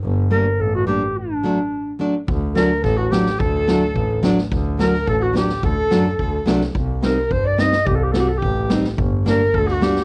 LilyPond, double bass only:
\new Staff \with { instrumentName = "Double bass" } { \clef bass \time 2/4 \tempo 4 = 107 g,,4 a,,8 r8 | r2 | d,4 a,,8 r8 | d,4 a,,8 r8 |
d,4 a,,8 r8 | d,8 fis,8 d,8 c,8 | c,4 g,8 r8 | c,4 a,,8 r8 |
g,,4 d,8 r8 | }